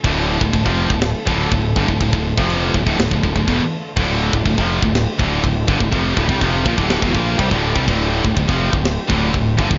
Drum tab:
CC |x---x---x---x---|x---x---x---x---|x---x---x---x---|x---x---x---x---|
SD |--------o-------|--------o-------|--------o-------|--------o-------|
BD |o--ooo-o--o-o-oo|oo-o--oo-oooo---|o--ooo-o--o-o-oo|o-ooo-oo-oo-oo-o|

CC |x---x---x---x---|
SD |--------o-------|
BD |o--ooo-o--o-o-oo|